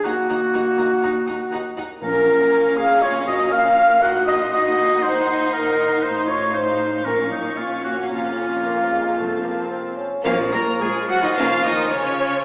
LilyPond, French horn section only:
\new Staff \with { instrumentName = "French horn section" } { \time 4/4 \key ees \dorian \tempo 4 = 118 ges'2.~ ges'8 r8 | \key bes \minor bes'4. f''8 des''8 ees''8 f''4 | ges'8 ees''8 ees''4 c''4 bes'4 | c''8 des''8 c''4 bes'8 ees'8 f'8 ges'8 |
f'2.~ f'8 r8 | <f des'>1 | }